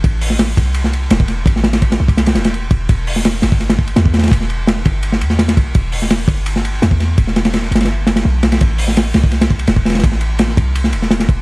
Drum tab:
RD |x-------x---x---x---x---x---x---|x---x-x-x-x---x-x-x-x-x-x---x---|x-------x---x---x-x---x-x---xxxx|x---x---x---x---x---x---x-x-x---|
HH |----o---------------------------|--------------------------------|----o---------------------------|--------------------------------|
SD |------o-o---------o-----o---o---|--o-o-o---o-----o-o-o-o---------|------o-o---o---o-o-----o---oooo|--o-----o-o-------o---o-o-o-----|
BD |o-----------o-------------o-----|o-------o-----o-------------o---|o-------------o-----o-----o-----|o-----------o---------------o---|

RD |x-------x---x---x---x---x---x---|x---x-x-x---xxxx----x-x-----x-x-|x-------x---x---x-x---x-x---xxxx|x---x---x---x---x---x---x-x-x---|
HH |----o---------------------------|--------------------------------|----o---------------------------|--------------------------------|
SD |------o-o---------o-----o---o---|--o-o-o-o-o--ooo----o-o-----o-o-|------o-o---o---o-o-----o---oooo|--o-----o-o-------o---o-o-o-----|
BD |o-----------o-------------o-----|o-------------------------------|o-------------o-----o-----o-----|o-----------o---------------o---|